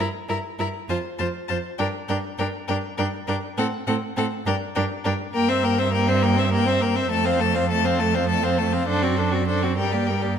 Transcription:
0.29 cello G2, viola E4, violin A#4 A#5
0.59 cello G2, viola E4, violin A#4 A#5
0.89 cello F2, viola F4, violin C5 A5
1.19 cello F2, viola F4, violin C5 A5
1.48 cello F2, viola F4, violin C5 A5
1.78 cello G2, viola D4, violin A#4 G5
2.08 cello G2, viola D4, violin A#4 G5
2.38 cello G2, viola D4, violin A#4 G5
2.68 cello G2, viola D4, violin A#4 G5
2.98 cello G2, viola D4, violin A#4 G5
3.27 cello G2, viola D4, violin A#4 G5
3.57 cello A2, viola C4, violin A4 F#5
3.87 cello A2, viola C4, violin A4 F#5
4.17 cello A2, viola C4, violin A4 F#5
4.46 cello G2, viola D4, violin A#4 G5
4.75 cello G2, viola D4, violin A#4 G5
5.04 cello G2, viola D4, violin A#4 G5
5.34 cello G2, viola A#3, violin A#4 G5
5.49 viola C4, violin C5 E5
5.64 viola A#3, violin A#4 G5
5.78 viola C4, violin C5 E5
5.92 viola A#3, violin A#4 G5
6.08 viola C4, violin C5 E5
6.22 viola A#3, violin A#4 G5
6.37 viola C4, violin C5 E5
6.52 viola A#3, violin A#4 G5
6.66 viola C4, violin C5 E5
6.81 viola A#3, violin A#4 G5
6.95 viola C4, violin C5 E5
7.11 cello F2, viola A3, violin A4 A5
7.25 viola C4, violin C5 F5
7.40 viola A3, violin A4 A5
7.54 viola C4, violin C5 F5
7.69 viola A3, violin A4 A5
7.85 viola C4, violin C5 F5
7.99 viola A3, violin A4 A5
8.15 viola C4, violin C5 F5
8.29 viola A3, violin A4 A5
8.43 viola C4, violin C5 F5
8.58 viola A3, violin A4 A5
8.72 viola C4, violin C5 F5
8.87 cello F#2, viola D4, violin A4 C5
9.02 viola C4, violin F#4 D5
9.16 viola D4, violin A4 C5
9.31 viola C4, violin F#4 D5
9.47 viola D4, violin A4 C5
9.62 viola C4, violin F#4 D5
9.77 cello G2, viola G3, violin A#4 G5
9.92 viola A#3, violin G4 D5
10.06 viola G3, violin A#4 G5
10.22 viola A#3, violin G4 D5

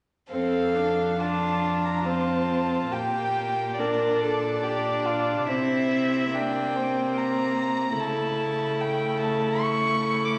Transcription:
0.32 cello F2, viola C4, violin A4 F5
0.75 viola D4
1.20 viola D4, violin F4 A5
1.86 violin A#5
2.05 viola C4, violin F4 A5
2.92 cello A#2, viola A#3, violin G4 G5
3.79 viola D4, violin A#4 D5
4.20 violin A4
4.63 viola D4, violin G4
5.06 violin F4
5.49 cello C3, viola C4, violin E4 E5
6.34 viola A#3, violin D4 G5
6.75 violin C4
7.17 violin A#5
7.99 cello C#3, viola A3, violin E4 A5
8.80 violin G5
9.20 violin A5
9.61 violin C#6
10.25 violin D6

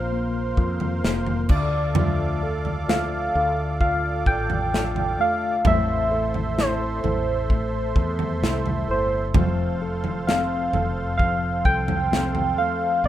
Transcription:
Already playing: fretless electric bass A#1, tine electric piano A#3 F4, steel-string acoustic guitar A#3 C4 F4, accordion A#4 C5 F5 C6, soft synth lead C5
0.12 tine electric piano A#3
0.57 fretless electric bass F2, tine electric piano F4, kick
0.80 floor tom
1.04 fretless electric bass F1, steel-string acoustic guitar F3 A#3 C4 F4, tine electric piano A#3, snare
1.26 floor tom
1.49 fretless electric bass D2, tine electric piano D3, steel-string acoustic guitar A3 D4 F4, accordion A4 D5 D6, soft synth lead D5, kick, crash
1.95 steel-string acoustic guitar D3 F3 A3 D4, tine electric piano F4, floor tom
1.99 steel-string acoustic guitar F4
2.43 steel-string acoustic guitar A3 F4, tine electric piano A4
2.65 floor tom
2.88 steel-string acoustic guitar F3 A3 D4 F4, tine electric piano F4, soft synth lead F5, snare
3.34 fretless electric bass D2, steel-string acoustic guitar A3 D4 F4, tine electric piano A4
3.80 tine electric piano F4, soft synth lead F5, kick
4.26 fretless electric bass A1, tine electric piano A4, soft synth lead G5, kick
4.50 floor tom
4.72 steel-string acoustic guitar F3 A3 D4 F4, tine electric piano F4, snare
4.96 floor tom
5.18 tine electric piano A3, steel-string acoustic guitar A3 D4 F4, soft synth lead F5
5.64 fretless electric bass A1, steel-string acoustic guitar A2 E3 A3 C4 E4 A4, tine electric piano A3, accordion C5 E5 C6, soft synth lead E5, kick, floor tom
6.11 steel-string acoustic guitar A3 C4 E4 A4, tine electric piano A4
6.34 floor tom
6.57 steel-string acoustic guitar A3 C4 E4 A4, tine electric piano E4, soft synth lead C5, snare
7.03 fretless electric bass A1, steel-string acoustic guitar A3 C4 E4 A4, tine electric piano A4, floor tom
7.50 tine electric piano A3, kick
7.96 fretless electric bass E2, tine electric piano A4, kick
8.19 floor tom
8.42 fretless electric bass C2, steel-string acoustic guitar A3 C4 E4 A4, tine electric piano E4, snare
8.66 floor tom
8.88 fretless electric bass G1, steel-string acoustic guitar A3 C4 E4 A4, tine electric piano A4, soft synth lead C5
9.34 fretless electric bass F1, steel-string acoustic guitar F2 F3 A3 C4 F4 A4, tine electric piano F3, accordion F5 C6, kick, floor tom
9.80 steel-string acoustic guitar A3 C4 F4 A4, tine electric piano A4
10.04 floor tom
10.27 steel-string acoustic guitar A3 C4 F4 A4, tine electric piano C4, soft synth lead F5, snare
10.73 fretless electric bass F1, steel-string acoustic guitar A3 C4 F4 A4, tine electric piano A4, floor tom
11.18 tine electric piano F3, soft synth lead F5, kick
11.65 fretless electric bass C2, tine electric piano A4, soft synth lead G5, kick
11.88 floor tom
12.12 steel-string acoustic guitar A3 C4 F4 A4, tine electric piano C4, snare
12.35 floor tom
12.58 steel-string acoustic guitar A3 C4 F4 A4, tine electric piano A4, soft synth lead F5
13.03 fretless electric bass A#1, tine electric piano A#3, accordion A#4

